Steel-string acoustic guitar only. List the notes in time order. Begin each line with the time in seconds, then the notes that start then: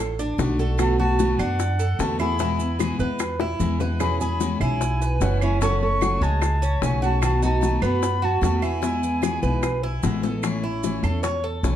0.38 D3 A3 D4 F#4
0.59 A3 D4 F#4
0.78 B2 D3 A3 B3 F#4
0.98 A3 B3 F#4
1.19 B2 D3 A3 B3 F#4
1.40 A3 B3 F#4
1.59 muted steel-string acoustic guitar stroke
1.99 B2 D3 A3 B3 F#4
2.19 A3 B3 F#4
2.40 B2 E3 G#3 B3 E4
2.59 G#3 B3 E4
2.79 B2 E3 G#3 B3 E4
2.99 G#3 B3 E4
3.19 muted steel-string acoustic guitar stroke
3.60 B2 E3 G#3 B3 E4
3.80 G#3 B3 E4
4.00 B2 E3 G#3 C#4 E4
4.21 G#3 C#4 E4
4.40 B2 E3 G#3 C#4 E4
4.60 G#3 C#4 E4
4.82 muted steel-string acoustic guitar stroke
5.21 B2 E3 G#3 C#4 E4
5.42 G#3 C#4 E4
5.61 C#3 F#3 A3 C#4 G#4
5.81 A3 C#4 G#4
6.01 C#3 F#3 A3 C#4 G#4
6.22 A3 C#4 G#4
6.41 muted steel-string acoustic guitar stroke
6.82 C#3 F#3 A3 C#4 G#4
7.01 A3 C#4 G#4
7.22 B2 D#3 A3 B3 F#4
7.42 A3 B3 F#4
7.61 B2 D#3 A3 B3 F#4
7.81 A3 B3 F#4
8.02 muted steel-string acoustic guitar stroke
8.41 B2 D#3 A3 B3 F#4
8.62 A3 B3 F#4
8.82 B2 E3 G#3 B3 E4
9.02 G#3 B3 E4
9.22 B2 E3 G#3 B3 E4
9.42 G#3 B3 E4
9.63 muted steel-string acoustic guitar stroke
10.03 B2 E3 G#3 B3 E4
10.24 G#3 B3 E4
10.43 E3 A3 C#4 E4
10.64 A3 C#4 E4
10.84 E3 A3 C#4 E4
11.04 A3 C#4 E4
11.24 muted steel-string acoustic guitar stroke
11.64 E3 A3 C#4 E4